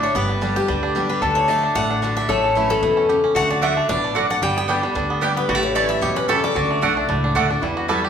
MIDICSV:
0, 0, Header, 1, 7, 480
1, 0, Start_track
1, 0, Key_signature, 2, "major"
1, 0, Tempo, 267142
1, 268, Time_signature, 4, 2, 24, 8
1, 14543, End_track
2, 0, Start_track
2, 0, Title_t, "Steel-string acoustic guitar"
2, 0, Program_c, 0, 25
2, 59, Note_on_c, 0, 73, 81
2, 274, Note_off_c, 0, 73, 0
2, 281, Note_on_c, 0, 71, 107
2, 1010, Note_on_c, 0, 67, 92
2, 1036, Note_off_c, 0, 71, 0
2, 1966, Note_on_c, 0, 71, 85
2, 1998, Note_off_c, 0, 67, 0
2, 2420, Note_off_c, 0, 71, 0
2, 2428, Note_on_c, 0, 73, 100
2, 2660, Note_off_c, 0, 73, 0
2, 2660, Note_on_c, 0, 74, 98
2, 3143, Note_off_c, 0, 74, 0
2, 3151, Note_on_c, 0, 78, 124
2, 3837, Note_off_c, 0, 78, 0
2, 3891, Note_on_c, 0, 76, 101
2, 4096, Note_off_c, 0, 76, 0
2, 4111, Note_on_c, 0, 73, 95
2, 4853, Note_on_c, 0, 69, 100
2, 4871, Note_off_c, 0, 73, 0
2, 5743, Note_off_c, 0, 69, 0
2, 6038, Note_on_c, 0, 78, 111
2, 6274, Note_off_c, 0, 78, 0
2, 6296, Note_on_c, 0, 74, 87
2, 6498, Note_off_c, 0, 74, 0
2, 6514, Note_on_c, 0, 76, 92
2, 6983, Note_off_c, 0, 76, 0
2, 6991, Note_on_c, 0, 74, 114
2, 7727, Note_off_c, 0, 74, 0
2, 7734, Note_on_c, 0, 78, 103
2, 7946, Note_off_c, 0, 78, 0
2, 7953, Note_on_c, 0, 79, 116
2, 8190, Note_off_c, 0, 79, 0
2, 8223, Note_on_c, 0, 79, 104
2, 9107, Note_off_c, 0, 79, 0
2, 9651, Note_on_c, 0, 71, 92
2, 10104, Note_off_c, 0, 71, 0
2, 10111, Note_on_c, 0, 73, 89
2, 10333, Note_off_c, 0, 73, 0
2, 10341, Note_on_c, 0, 74, 106
2, 10578, Note_on_c, 0, 76, 101
2, 10609, Note_off_c, 0, 74, 0
2, 10805, Note_off_c, 0, 76, 0
2, 10805, Note_on_c, 0, 73, 116
2, 11072, Note_on_c, 0, 71, 93
2, 11082, Note_off_c, 0, 73, 0
2, 11291, Note_off_c, 0, 71, 0
2, 11298, Note_on_c, 0, 69, 99
2, 11542, Note_off_c, 0, 69, 0
2, 11567, Note_on_c, 0, 74, 103
2, 13155, Note_off_c, 0, 74, 0
2, 14543, End_track
3, 0, Start_track
3, 0, Title_t, "Mandolin"
3, 0, Program_c, 1, 25
3, 6495, Note_on_c, 1, 57, 91
3, 6505, Note_on_c, 1, 66, 99
3, 6512, Note_on_c, 1, 74, 96
3, 6519, Note_on_c, 1, 78, 107
3, 6675, Note_off_c, 1, 57, 0
3, 6680, Note_off_c, 1, 66, 0
3, 6684, Note_off_c, 1, 74, 0
3, 6687, Note_off_c, 1, 78, 0
3, 7453, Note_on_c, 1, 57, 90
3, 7457, Note_on_c, 1, 66, 97
3, 7466, Note_on_c, 1, 74, 101
3, 7475, Note_on_c, 1, 78, 103
3, 7634, Note_off_c, 1, 57, 0
3, 7636, Note_off_c, 1, 66, 0
3, 7640, Note_off_c, 1, 74, 0
3, 7645, Note_off_c, 1, 78, 0
3, 8407, Note_on_c, 1, 59, 93
3, 8420, Note_on_c, 1, 67, 85
3, 8423, Note_on_c, 1, 74, 104
3, 8433, Note_on_c, 1, 79, 109
3, 8590, Note_off_c, 1, 59, 0
3, 8597, Note_off_c, 1, 67, 0
3, 8599, Note_off_c, 1, 74, 0
3, 8604, Note_off_c, 1, 79, 0
3, 9370, Note_on_c, 1, 59, 96
3, 9381, Note_on_c, 1, 67, 100
3, 9390, Note_on_c, 1, 74, 97
3, 9396, Note_on_c, 1, 79, 100
3, 9551, Note_off_c, 1, 59, 0
3, 9557, Note_off_c, 1, 67, 0
3, 9562, Note_off_c, 1, 74, 0
3, 9565, Note_off_c, 1, 79, 0
3, 10327, Note_on_c, 1, 57, 90
3, 10335, Note_on_c, 1, 64, 98
3, 10345, Note_on_c, 1, 73, 98
3, 10354, Note_on_c, 1, 81, 98
3, 10510, Note_off_c, 1, 57, 0
3, 10514, Note_off_c, 1, 64, 0
3, 10519, Note_off_c, 1, 73, 0
3, 10523, Note_off_c, 1, 81, 0
3, 11287, Note_on_c, 1, 57, 97
3, 11298, Note_on_c, 1, 64, 101
3, 11305, Note_on_c, 1, 73, 113
3, 11311, Note_on_c, 1, 81, 101
3, 11470, Note_off_c, 1, 57, 0
3, 11475, Note_off_c, 1, 64, 0
3, 11479, Note_off_c, 1, 73, 0
3, 11482, Note_off_c, 1, 81, 0
3, 12256, Note_on_c, 1, 57, 91
3, 12260, Note_on_c, 1, 66, 95
3, 12268, Note_on_c, 1, 74, 106
3, 12277, Note_on_c, 1, 78, 97
3, 12434, Note_off_c, 1, 57, 0
3, 12436, Note_off_c, 1, 66, 0
3, 12440, Note_off_c, 1, 74, 0
3, 12445, Note_off_c, 1, 78, 0
3, 13207, Note_on_c, 1, 57, 108
3, 13219, Note_on_c, 1, 66, 99
3, 13225, Note_on_c, 1, 74, 102
3, 13233, Note_on_c, 1, 78, 109
3, 13390, Note_off_c, 1, 57, 0
3, 13396, Note_off_c, 1, 66, 0
3, 13399, Note_off_c, 1, 74, 0
3, 13403, Note_off_c, 1, 78, 0
3, 14165, Note_on_c, 1, 55, 84
3, 14173, Note_on_c, 1, 64, 91
3, 14182, Note_on_c, 1, 71, 90
3, 14188, Note_on_c, 1, 76, 91
3, 14349, Note_off_c, 1, 55, 0
3, 14353, Note_off_c, 1, 64, 0
3, 14357, Note_off_c, 1, 71, 0
3, 14360, Note_off_c, 1, 76, 0
3, 14543, End_track
4, 0, Start_track
4, 0, Title_t, "Resonator guitar played with a steel bar"
4, 0, Program_c, 2, 25
4, 0, Note_on_c, 2, 64, 96
4, 201, Note_off_c, 2, 64, 0
4, 271, Note_on_c, 2, 67, 95
4, 2186, Note_on_c, 2, 69, 113
4, 2249, Note_off_c, 2, 67, 0
4, 4036, Note_off_c, 2, 69, 0
4, 4109, Note_on_c, 2, 69, 109
4, 5735, Note_off_c, 2, 69, 0
4, 6016, Note_on_c, 2, 66, 100
4, 7934, Note_off_c, 2, 66, 0
4, 7941, Note_on_c, 2, 67, 96
4, 9839, Note_off_c, 2, 67, 0
4, 9861, Note_on_c, 2, 67, 100
4, 11766, Note_off_c, 2, 67, 0
4, 11773, Note_on_c, 2, 66, 86
4, 13406, Note_off_c, 2, 66, 0
4, 13688, Note_on_c, 2, 64, 77
4, 14543, Note_off_c, 2, 64, 0
4, 14543, End_track
5, 0, Start_track
5, 0, Title_t, "Five-string banjo"
5, 0, Program_c, 3, 105
5, 0, Note_on_c, 3, 62, 60
5, 50, Note_off_c, 3, 62, 0
5, 50, Note_on_c, 3, 62, 67
5, 264, Note_off_c, 3, 62, 0
5, 271, Note_on_c, 3, 59, 65
5, 526, Note_on_c, 3, 55, 59
5, 752, Note_on_c, 3, 62, 58
5, 957, Note_off_c, 3, 59, 0
5, 1008, Note_on_c, 3, 67, 67
5, 1184, Note_off_c, 3, 55, 0
5, 1230, Note_on_c, 3, 55, 72
5, 1438, Note_off_c, 3, 62, 0
5, 1489, Note_on_c, 3, 62, 71
5, 1665, Note_off_c, 3, 67, 0
5, 1716, Note_on_c, 3, 67, 59
5, 1916, Note_off_c, 3, 55, 0
5, 1948, Note_off_c, 3, 62, 0
5, 1969, Note_on_c, 3, 62, 58
5, 2168, Note_off_c, 3, 62, 0
5, 2189, Note_on_c, 3, 62, 70
5, 2193, Note_off_c, 3, 67, 0
5, 2448, Note_on_c, 3, 57, 54
5, 2654, Note_off_c, 3, 62, 0
5, 2675, Note_on_c, 3, 62, 55
5, 2913, Note_off_c, 3, 62, 0
5, 2934, Note_on_c, 3, 62, 68
5, 3147, Note_off_c, 3, 57, 0
5, 3154, Note_on_c, 3, 57, 74
5, 3399, Note_off_c, 3, 62, 0
5, 3421, Note_on_c, 3, 62, 62
5, 3619, Note_off_c, 3, 62, 0
5, 3640, Note_on_c, 3, 62, 59
5, 3880, Note_off_c, 3, 62, 0
5, 3901, Note_on_c, 3, 62, 65
5, 4116, Note_off_c, 3, 62, 0
5, 4121, Note_off_c, 3, 57, 0
5, 4128, Note_on_c, 3, 57, 88
5, 4385, Note_on_c, 3, 61, 55
5, 4611, Note_on_c, 3, 64, 59
5, 4805, Note_off_c, 3, 57, 0
5, 4859, Note_on_c, 3, 57, 75
5, 5033, Note_off_c, 3, 61, 0
5, 5060, Note_off_c, 3, 64, 0
5, 5082, Note_on_c, 3, 64, 63
5, 5337, Note_on_c, 3, 61, 59
5, 5510, Note_off_c, 3, 57, 0
5, 5554, Note_on_c, 3, 67, 55
5, 5762, Note_off_c, 3, 64, 0
5, 5797, Note_off_c, 3, 61, 0
5, 5818, Note_on_c, 3, 61, 67
5, 6031, Note_off_c, 3, 67, 0
5, 6034, Note_off_c, 3, 61, 0
5, 6037, Note_on_c, 3, 57, 84
5, 6297, Note_on_c, 3, 62, 60
5, 6495, Note_off_c, 3, 62, 0
5, 6517, Note_on_c, 3, 62, 60
5, 6719, Note_off_c, 3, 57, 0
5, 6775, Note_on_c, 3, 57, 72
5, 6973, Note_off_c, 3, 62, 0
5, 6995, Note_on_c, 3, 62, 71
5, 7236, Note_off_c, 3, 62, 0
5, 7258, Note_on_c, 3, 62, 60
5, 7428, Note_off_c, 3, 57, 0
5, 7458, Note_off_c, 3, 62, 0
5, 7480, Note_on_c, 3, 62, 59
5, 7717, Note_off_c, 3, 62, 0
5, 7739, Note_on_c, 3, 62, 64
5, 7954, Note_off_c, 3, 62, 0
5, 7955, Note_on_c, 3, 55, 89
5, 8209, Note_on_c, 3, 59, 58
5, 8430, Note_on_c, 3, 62, 63
5, 8638, Note_off_c, 3, 55, 0
5, 8685, Note_on_c, 3, 55, 73
5, 8864, Note_off_c, 3, 59, 0
5, 8889, Note_off_c, 3, 62, 0
5, 8911, Note_on_c, 3, 62, 63
5, 9167, Note_on_c, 3, 59, 65
5, 9342, Note_off_c, 3, 55, 0
5, 9381, Note_on_c, 3, 67, 63
5, 9595, Note_off_c, 3, 62, 0
5, 9619, Note_off_c, 3, 59, 0
5, 9641, Note_on_c, 3, 59, 58
5, 9863, Note_off_c, 3, 67, 0
5, 9863, Note_on_c, 3, 55, 90
5, 9864, Note_off_c, 3, 59, 0
5, 9967, Note_off_c, 3, 55, 0
5, 9967, Note_on_c, 3, 57, 76
5, 10326, Note_off_c, 3, 57, 0
5, 10347, Note_on_c, 3, 57, 58
5, 10601, Note_on_c, 3, 64, 62
5, 10823, Note_on_c, 3, 67, 71
5, 11033, Note_off_c, 3, 57, 0
5, 11079, Note_on_c, 3, 61, 67
5, 11259, Note_off_c, 3, 64, 0
5, 11282, Note_off_c, 3, 67, 0
5, 11304, Note_on_c, 3, 67, 62
5, 11552, Note_off_c, 3, 61, 0
5, 11574, Note_on_c, 3, 61, 68
5, 11784, Note_off_c, 3, 67, 0
5, 11785, Note_off_c, 3, 61, 0
5, 11792, Note_on_c, 3, 62, 70
5, 12050, Note_on_c, 3, 57, 57
5, 12250, Note_off_c, 3, 62, 0
5, 12272, Note_on_c, 3, 62, 64
5, 12502, Note_off_c, 3, 62, 0
5, 12524, Note_on_c, 3, 62, 66
5, 12704, Note_off_c, 3, 57, 0
5, 12751, Note_on_c, 3, 57, 69
5, 12987, Note_off_c, 3, 62, 0
5, 13009, Note_on_c, 3, 62, 69
5, 13203, Note_off_c, 3, 62, 0
5, 13225, Note_on_c, 3, 62, 58
5, 13435, Note_off_c, 3, 57, 0
5, 13464, Note_off_c, 3, 62, 0
5, 13486, Note_on_c, 3, 62, 64
5, 13706, Note_on_c, 3, 55, 73
5, 13707, Note_off_c, 3, 62, 0
5, 13959, Note_on_c, 3, 66, 84
5, 14168, Note_off_c, 3, 66, 0
5, 14178, Note_on_c, 3, 69, 109
5, 14393, Note_off_c, 3, 55, 0
5, 14448, Note_off_c, 3, 69, 0
5, 14456, Note_on_c, 3, 67, 83
5, 14543, Note_off_c, 3, 67, 0
5, 14543, End_track
6, 0, Start_track
6, 0, Title_t, "Steel-string acoustic guitar"
6, 0, Program_c, 4, 25
6, 0, Note_on_c, 4, 45, 94
6, 0, Note_on_c, 4, 50, 96
6, 0, Note_on_c, 4, 57, 92
6, 0, Note_on_c, 4, 62, 107
6, 0, Note_on_c, 4, 66, 91
6, 221, Note_off_c, 4, 45, 0
6, 243, Note_off_c, 4, 50, 0
6, 250, Note_off_c, 4, 57, 0
6, 256, Note_off_c, 4, 62, 0
6, 264, Note_off_c, 4, 66, 0
6, 267, Note_on_c, 4, 43, 96
6, 742, Note_on_c, 4, 50, 87
6, 752, Note_on_c, 4, 55, 94
6, 766, Note_on_c, 4, 59, 88
6, 775, Note_on_c, 4, 67, 90
6, 1184, Note_off_c, 4, 43, 0
6, 1203, Note_off_c, 4, 50, 0
6, 1209, Note_off_c, 4, 55, 0
6, 1215, Note_off_c, 4, 59, 0
6, 1220, Note_off_c, 4, 67, 0
6, 1227, Note_on_c, 4, 50, 100
6, 1684, Note_off_c, 4, 50, 0
6, 1705, Note_on_c, 4, 50, 88
6, 1720, Note_on_c, 4, 55, 108
6, 1730, Note_on_c, 4, 59, 92
6, 1745, Note_on_c, 4, 67, 96
6, 2165, Note_off_c, 4, 50, 0
6, 2173, Note_off_c, 4, 55, 0
6, 2178, Note_off_c, 4, 59, 0
6, 2185, Note_off_c, 4, 67, 0
6, 2201, Note_on_c, 4, 50, 92
6, 2636, Note_off_c, 4, 50, 0
6, 2658, Note_on_c, 4, 50, 88
6, 2671, Note_on_c, 4, 57, 84
6, 2685, Note_on_c, 4, 62, 87
6, 2695, Note_on_c, 4, 66, 86
6, 3122, Note_off_c, 4, 50, 0
6, 3128, Note_off_c, 4, 57, 0
6, 3135, Note_off_c, 4, 62, 0
6, 3140, Note_off_c, 4, 66, 0
6, 3156, Note_on_c, 4, 45, 108
6, 3631, Note_on_c, 4, 50, 95
6, 3645, Note_on_c, 4, 57, 98
6, 3658, Note_on_c, 4, 62, 103
6, 3671, Note_on_c, 4, 66, 104
6, 4068, Note_off_c, 4, 45, 0
6, 4088, Note_off_c, 4, 50, 0
6, 4095, Note_off_c, 4, 57, 0
6, 4102, Note_off_c, 4, 62, 0
6, 4108, Note_off_c, 4, 66, 0
6, 4124, Note_on_c, 4, 45, 100
6, 4586, Note_on_c, 4, 52, 87
6, 4602, Note_on_c, 4, 57, 85
6, 4615, Note_on_c, 4, 61, 97
6, 4626, Note_on_c, 4, 64, 94
6, 5032, Note_off_c, 4, 45, 0
6, 5045, Note_off_c, 4, 52, 0
6, 5053, Note_off_c, 4, 57, 0
6, 5060, Note_off_c, 4, 61, 0
6, 5066, Note_off_c, 4, 64, 0
6, 5078, Note_on_c, 4, 47, 101
6, 5531, Note_off_c, 4, 47, 0
6, 5563, Note_on_c, 4, 49, 89
6, 6014, Note_off_c, 4, 49, 0
6, 6034, Note_on_c, 4, 50, 92
6, 6483, Note_off_c, 4, 50, 0
6, 6505, Note_on_c, 4, 50, 87
6, 6520, Note_on_c, 4, 57, 73
6, 6529, Note_on_c, 4, 62, 89
6, 6542, Note_on_c, 4, 66, 100
6, 6964, Note_off_c, 4, 50, 0
6, 6972, Note_off_c, 4, 57, 0
6, 6976, Note_off_c, 4, 62, 0
6, 6983, Note_off_c, 4, 66, 0
6, 6993, Note_on_c, 4, 47, 101
6, 7448, Note_off_c, 4, 47, 0
6, 7476, Note_on_c, 4, 45, 90
6, 7929, Note_off_c, 4, 45, 0
6, 7952, Note_on_c, 4, 43, 97
6, 8417, Note_on_c, 4, 50, 94
6, 8432, Note_on_c, 4, 55, 81
6, 8447, Note_on_c, 4, 59, 94
6, 8460, Note_on_c, 4, 67, 83
6, 8656, Note_off_c, 4, 67, 0
6, 8670, Note_off_c, 4, 50, 0
6, 8677, Note_off_c, 4, 55, 0
6, 8677, Note_on_c, 4, 67, 70
6, 8685, Note_off_c, 4, 59, 0
6, 8716, Note_on_c, 4, 59, 49
6, 8865, Note_off_c, 4, 43, 0
6, 8894, Note_off_c, 4, 67, 0
6, 8898, Note_on_c, 4, 50, 99
6, 8913, Note_off_c, 4, 59, 0
6, 9341, Note_off_c, 4, 50, 0
6, 9363, Note_on_c, 4, 50, 85
6, 9379, Note_on_c, 4, 55, 96
6, 9395, Note_on_c, 4, 59, 104
6, 9404, Note_on_c, 4, 67, 89
6, 9832, Note_off_c, 4, 50, 0
6, 9840, Note_off_c, 4, 55, 0
6, 9848, Note_off_c, 4, 59, 0
6, 9853, Note_off_c, 4, 67, 0
6, 9865, Note_on_c, 4, 45, 103
6, 10331, Note_on_c, 4, 52, 81
6, 10342, Note_on_c, 4, 57, 75
6, 10357, Note_on_c, 4, 61, 87
6, 10366, Note_on_c, 4, 64, 94
6, 10781, Note_off_c, 4, 45, 0
6, 10796, Note_off_c, 4, 52, 0
6, 10802, Note_off_c, 4, 57, 0
6, 10809, Note_off_c, 4, 61, 0
6, 10813, Note_off_c, 4, 64, 0
6, 10823, Note_on_c, 4, 47, 106
6, 11282, Note_off_c, 4, 47, 0
6, 11310, Note_on_c, 4, 49, 86
6, 11765, Note_off_c, 4, 49, 0
6, 11786, Note_on_c, 4, 50, 97
6, 12222, Note_off_c, 4, 50, 0
6, 12244, Note_on_c, 4, 50, 83
6, 12264, Note_on_c, 4, 57, 81
6, 12274, Note_on_c, 4, 62, 86
6, 12284, Note_on_c, 4, 66, 77
6, 12712, Note_off_c, 4, 50, 0
6, 12723, Note_off_c, 4, 57, 0
6, 12727, Note_off_c, 4, 62, 0
6, 12732, Note_off_c, 4, 66, 0
6, 12732, Note_on_c, 4, 45, 97
6, 13208, Note_on_c, 4, 50, 97
6, 13223, Note_on_c, 4, 57, 88
6, 13236, Note_on_c, 4, 62, 86
6, 13251, Note_on_c, 4, 66, 85
6, 13451, Note_off_c, 4, 66, 0
6, 13465, Note_off_c, 4, 50, 0
6, 13472, Note_off_c, 4, 57, 0
6, 13473, Note_on_c, 4, 66, 54
6, 13479, Note_off_c, 4, 62, 0
6, 13511, Note_on_c, 4, 62, 52
6, 13655, Note_off_c, 4, 45, 0
6, 13691, Note_off_c, 4, 66, 0
6, 13703, Note_on_c, 4, 40, 82
6, 13710, Note_off_c, 4, 62, 0
6, 14169, Note_on_c, 4, 52, 77
6, 14187, Note_on_c, 4, 55, 87
6, 14193, Note_on_c, 4, 59, 78
6, 14207, Note_on_c, 4, 66, 78
6, 14543, Note_off_c, 4, 40, 0
6, 14543, Note_off_c, 4, 52, 0
6, 14543, Note_off_c, 4, 55, 0
6, 14543, Note_off_c, 4, 59, 0
6, 14543, Note_off_c, 4, 66, 0
6, 14543, End_track
7, 0, Start_track
7, 0, Title_t, "Upright bass"
7, 0, Program_c, 5, 32
7, 264, Note_on_c, 5, 31, 87
7, 1033, Note_off_c, 5, 31, 0
7, 1232, Note_on_c, 5, 38, 88
7, 1998, Note_off_c, 5, 38, 0
7, 2186, Note_on_c, 5, 38, 93
7, 2954, Note_off_c, 5, 38, 0
7, 3146, Note_on_c, 5, 33, 81
7, 3914, Note_off_c, 5, 33, 0
7, 4102, Note_on_c, 5, 33, 90
7, 4871, Note_off_c, 5, 33, 0
7, 5062, Note_on_c, 5, 40, 82
7, 5831, Note_off_c, 5, 40, 0
7, 6027, Note_on_c, 5, 38, 92
7, 6794, Note_off_c, 5, 38, 0
7, 6984, Note_on_c, 5, 33, 93
7, 7752, Note_off_c, 5, 33, 0
7, 7939, Note_on_c, 5, 31, 88
7, 8708, Note_off_c, 5, 31, 0
7, 8895, Note_on_c, 5, 38, 83
7, 9666, Note_off_c, 5, 38, 0
7, 9850, Note_on_c, 5, 33, 95
7, 10622, Note_off_c, 5, 33, 0
7, 10814, Note_on_c, 5, 40, 77
7, 11585, Note_off_c, 5, 40, 0
7, 11778, Note_on_c, 5, 38, 97
7, 12164, Note_off_c, 5, 38, 0
7, 12257, Note_on_c, 5, 35, 77
7, 12669, Note_off_c, 5, 35, 0
7, 12740, Note_on_c, 5, 37, 94
7, 13150, Note_off_c, 5, 37, 0
7, 13219, Note_on_c, 5, 38, 83
7, 13630, Note_off_c, 5, 38, 0
7, 13689, Note_on_c, 5, 40, 98
7, 14462, Note_off_c, 5, 40, 0
7, 14543, End_track
0, 0, End_of_file